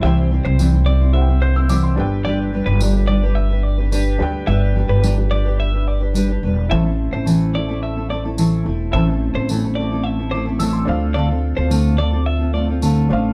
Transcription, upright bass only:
\new Staff \with { instrumentName = "Upright bass" } { \clef bass \time 4/4 \key a \minor \tempo 4 = 108 c,8. c,2~ c,8. g,,8~ | g,,8. g,,2~ g,,8. d,8 | g,,8. g,,2~ g,,8. e,,8 | a,,8. a,,2~ a,,8. e,,8 |
a,,8. a,,2~ a,,8. d,8~ | d,8. d,2~ d,8. a,,8 | }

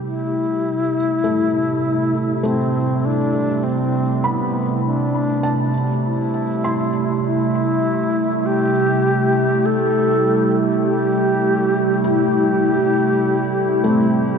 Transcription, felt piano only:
<<
  \new Staff \with { instrumentName = "Felt piano" } { \time 4/4 \key a \minor \tempo 4 = 50 e'8. r2 r8. b''8~ | b''8 a''4 c'''2~ c'''8~ | c'''16 r4. r16 e'2 | }
  \new Staff \with { instrumentName = "Felt piano" } { \time 4/4 \key a \minor r4 a4 a2~ | a8. r2. r16 | r2. r8 a8 | }
>>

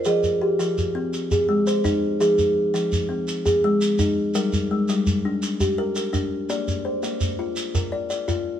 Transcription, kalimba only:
<<
  \new Staff \with { instrumentName = "Kalimba" } { \time 12/8 \key f \dorian \tempo 4. = 112 aes'4 g'4. r4 aes'4 c''4. | aes'4. r2 aes'4. r4 | bes'4 aes4. r4 g'4 bes'4. | d''4 c''4. r4 bes'4 d''4. | }
  \new Staff \with { instrumentName = "Kalimba" } { \time 12/8 \key f \dorian f4 r8 f4 c'8 r4 aes4 ees'4 | f4 r8 f4 c'8 r4 aes4 ees'4 | g4 r8 g4 d'4 r8 bes'4 d'4 | bes4 r8 bes4 f'4 r8 d''4 f'4 | }
>>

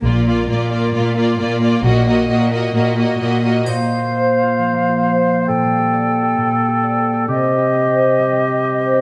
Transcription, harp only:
\new Staff \with { instrumentName = "Harp" } { \time 4/4 \key bes \major \tempo 4 = 133 r1 | r1 | \tuplet 3/2 { bes,8 bes8 f'8 c''4 f'8 f8 bes8 f'8 c''4 f'8 } | \tuplet 3/2 { bes,8 g8 g'8 d''8 a'8 g'8 bes,4 g'8 d''8 a'8 g'8 } |
\tuplet 3/2 { c8 c'8 g'8 ees''8 c''8 g'8 g8 c'8 g'8 ees''8 c''8 g'8 } | }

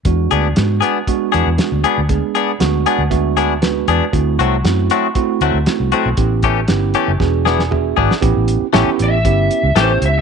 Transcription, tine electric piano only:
\new Staff \with { instrumentName = "Tine electric piano" } { \time 4/4 \key e \dorian \tempo 4 = 118 << { r1 | r4. fis''8 e''4 b'4 | r1 | r2 r8 gis''8 e''4 |
r1 | } \\ { <gis b d' fis'>4 <gis b d' fis'>4 <gis b d' fis'>4 <gis b d' fis'>4 | <gis b d' gis'>4 <gis b d' fis'>4 <gis b d' fis'>4 <gis b d' fis'>4 | <a c' e' fis'>4 <a c' e' fis'>4 <a c' e' fis'>4 <a c' e' fis'>4 | <b cis' e' g'>4 <b cis' e' g'>4 <b d' fis' gis'>4 <b d' fis' gis'>4 |
<b cis' e' g'>4 <b cis' e' g'>4 <b cis' e' g'>4 <b cis' e' g'>4 | } >> }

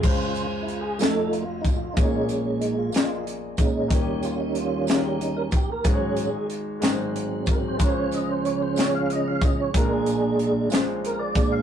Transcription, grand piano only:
<<
  \new Staff \with { instrumentName = "Grand piano" } { \time 6/8 \key des \major \tempo 4. = 62 <aes des' f' c''>4 r8 <a f' ges' ees''>4 r8 | <bes f' aes' des''>4 r8 <bes f' aes' d'' ees''>4 r8 | <bes ees' g' des''>4 r8 <bes ees' g' aes' bes'>4 r8 | <aes ees' ges' c'' des''>4 r8 <aes ees' ges' bes' c''>4 r8 |
<aes des' f' bes' c''>4 r8 <aes des' f' des''>4 r8 | <aes d' f' bes'>4 r8 <aes des' d' f' c''>4 r8 | }
  \new Staff \with { instrumentName = "Grand piano" } { \clef bass \time 6/8 \key des \major <des, des>4. <f,, f,>4. | <bes,, bes,>2. | <ees, ees>2. | <aes,, aes,>4. <aes,, aes,>4. |
<des, des>2. | <bes,, bes,>2. | }
>>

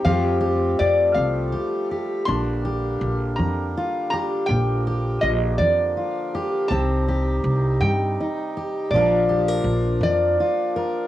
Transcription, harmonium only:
\new Staff \with { instrumentName = "Harmonium" } { \clef bass \time 6/8 \key bes \major \tempo 4. = 54 << { <f a>2. | <d bes>2.~ | <d bes>2. | <c ees'>2. |
<f d'>2. | } \\ { g2.~ | g2. | f2. | g2. |
bes2. | } >> }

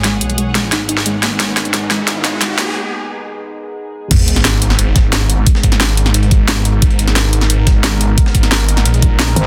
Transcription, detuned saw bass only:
\new Staff \with { instrumentName = "Detuned saw bass" } { \clef bass \time 4/4 \key gis \minor \tempo 4 = 177 gis,,8 b,,4. gis,,4 gis,,4 | gis,,2~ gis,,8 gis,,4 gis,,8 | r1 | gis,,1 |
r8 gis,,4. gis,,2 | gis,,1 | r8 gis,,4. ais,,4. r8 | }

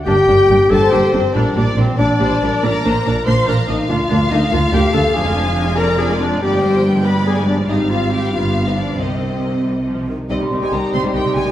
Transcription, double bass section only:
\new Staff \with { instrumentName = "Double bass section" } { \clef bass \time 6/8 \key g \minor \tempo 4. = 94 g,,8 g,,8 g,,8 g,,8 g,,8 g,,8 | bes,,8 bes,,8 bes,,8 bes,,8 bes,,8 bes,,8 | bes,,8 bes,,8 bes,,8 bes,,8 bes,,8 bes,,8 | d,8 d,8 d,8 d,8 d,8 d,8 |
\key c \minor f,,2. | g,,2. | aes,,4. g,,4. | c,2~ c,8 r8 |
c,16 r16 c,16 r16 c,16 r16 c,16 r16 c,16 r16 c,16 r16 | }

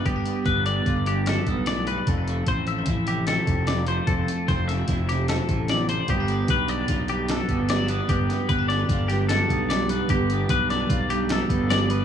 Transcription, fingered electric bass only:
\new Staff \with { instrumentName = "Fingered electric bass" } { \clef bass \time 5/4 \key g \mixolydian \tempo 4 = 149 g,,8 r8 g,,4 g,,4. b,,4. | f,,4 a,,4 a,,4. f,,4. | f,,8 r8 f,,4 f,,4. a,,4. | g,,4 b,,4 b,,4. g,,4. |
g,,8 r8 g,,4 g,,4. b,,4. | g,,4 b,,4 b,,4. g,,4. | }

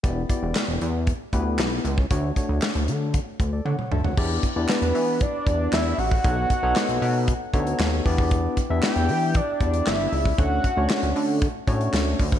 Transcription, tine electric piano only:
\new Staff \with { instrumentName = "Tine electric piano" } { \time 4/4 \key e \dorian \tempo 4 = 116 << { r1 | r2 r8. <a' d''>16 <cis'' fis''>8 <e'' a''>16 <cis'' fis''>16~ | <cis'' fis''>16 r2. r8. | r1 |
r1 | r1 | } \\ { <b e' g' d''>16 r16 <b e' fis' g' d''>4~ <b e' fis' g' d''>16 r8. <b e' g' b'>4 r8 | <a d' fis' cis''>16 r16 <a d' fis' cis''>4~ <a d' fis' cis''>16 r2 r16 | <b d' e' g' d''>8 r16 <b d' e' g' d''>4~ <b d' e' g' d''>16 r8 <b d' e' g' d''>4 r8 | <b dis' fis' a' cis''>8 r16 <b dis' fis' a' cis''>4~ <b dis' fis' a' cis''>16 r8 <b dis' fis' a' cis''>4 <b d' e' g' d''>8~ |
<b d' e' g' d''>8 r16 <b d' e' g' e''>4~ <b d' e' g' e''>16 r8 <b d' e' g' d''>4 r8 | <a cis' d' fis' cis''>8 r16 <a cis' d' fis' cis''>4~ <a cis' d' fis' cis''>16 r8 <a cis' d' fis' cis''>4 r8 | } >> }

